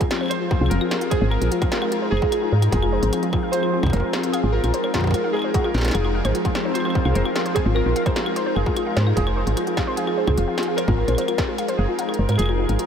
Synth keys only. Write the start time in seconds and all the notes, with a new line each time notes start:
0.29 C5
0.70 A#4
1.10 G#4
1.30 A#4
2.11 G#4
2.71 G#4
3.51 C5
3.92 A#4
4.32 G#4
4.52 A#4
5.33 G#4
5.93 G#4
6.74 C5
7.14 A#4
7.54 G#4
7.74 A#4
8.55 G#4
9.15 G#4
9.96 G#4
10.76 A#4
11.77 G#4
12.37 G#4